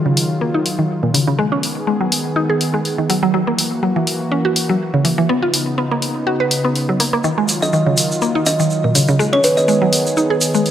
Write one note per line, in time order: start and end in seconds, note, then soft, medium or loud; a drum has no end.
0.00 1.37 D#3 medium
0.00 1.37 F#3 medium
0.00 1.37 F4 medium
0.06 0.16 C#3 medium
0.17 open hi-hat medium
0.41 0.53 A#3 medium
0.54 0.61 D#4 medium
0.66 open hi-hat medium
0.79 0.85 D#3 medium
1.03 1.14 A#2 medium
1.14 1.26 C#3 medium
1.14 open hi-hat medium
1.27 1.38 C#3 medium
1.39 3.32 D#3 medium
1.39 1.46 G#3 medium
1.39 3.32 B3 medium
1.39 3.32 G#4 medium
1.52 1.58 C#4 medium
1.63 open hi-hat medium
1.87 1.99 G#3 medium
2.01 2.11 F#3 medium
2.12 open hi-hat medium
2.36 2.48 D#4 medium
2.50 2.56 G#4 medium
2.61 open hi-hat medium
2.74 2.80 G#3 medium
2.85 open hi-hat soft
2.98 3.09 D#3 medium
3.10 3.22 F#3 medium
3.10 open hi-hat medium
3.23 3.33 F#3 medium
3.34 5.27 E3 medium
3.34 3.41 F#3 medium
3.34 5.27 A#3 medium
3.34 5.27 F#4 medium
3.47 3.53 A#3 medium
3.59 open hi-hat medium
3.83 3.95 F#3 medium
3.96 4.06 E3 medium
4.07 open hi-hat medium
4.32 4.44 C#4 medium
4.45 4.51 F#4 medium
4.56 open hi-hat medium
4.69 4.75 F#3 medium
4.94 5.04 C#3 medium
5.05 5.17 E3 medium
5.05 open hi-hat medium
5.18 5.28 E3 medium
5.29 7.22 C#3 medium
5.29 7.22 B3 medium
5.29 5.36 B3 loud
5.29 7.22 D#4 medium
5.42 5.48 F4 medium
5.54 open hi-hat medium
5.78 5.90 B3 medium
5.91 6.01 A#3 medium
6.02 open hi-hat medium
6.27 6.39 F#4 medium
6.40 6.46 B4 medium
6.51 open hi-hat medium
6.65 6.71 B3 medium
6.76 open hi-hat soft
6.89 6.99 F#3 medium
7.00 7.12 A#3 medium
7.00 open hi-hat medium
7.13 7.23 A#3 loud
7.24 7.31 D#3 medium
7.24 9.18 D#3 medium
7.24 9.18 F#3 medium
7.24 9.18 F4 medium
7.24 shaker soft
7.38 7.44 G#3 medium
7.48 open hi-hat medium
7.48 shaker medium
7.62 7.72 D#5 medium
7.62 shaker soft
7.73 7.85 D#3 medium
7.73 shaker soft
7.86 7.96 C#3 medium
7.97 open hi-hat medium
7.97 shaker medium
8.11 shaker soft
8.21 8.34 A#3 medium
8.21 shaker soft
8.35 8.41 D#4 medium
8.46 8.59 D#5 medium
8.46 open hi-hat medium
8.46 shaker medium
8.60 8.66 D#3 medium
8.60 shaker soft
8.70 shaker soft
8.84 8.95 A#2 medium
8.95 9.07 C#3 medium
8.95 open hi-hat medium
8.95 shaker medium
9.08 9.18 C#3 medium
9.08 shaker soft
9.19 10.71 D#3 medium
9.19 9.27 G#3 loud
9.19 10.71 B3 medium
9.19 10.71 G#4 medium
9.19 shaker soft
9.33 9.39 C#4 medium
9.33 9.42 C#5 medium
9.44 9.55 B4 medium
9.44 open hi-hat medium
9.44 shaker medium
9.57 9.67 D#5 medium
9.57 shaker soft
9.68 9.80 G#3 medium
9.68 shaker soft
9.82 9.92 F#3 medium
9.93 open hi-hat medium
9.93 shaker medium
10.06 shaker medium
10.17 10.29 D#4 medium
10.17 shaker soft
10.30 10.36 G#4 medium
10.41 open hi-hat medium
10.41 shaker medium
10.54 10.61 G#3 medium
10.54 shaker soft
10.66 open hi-hat soft
10.66 shaker soft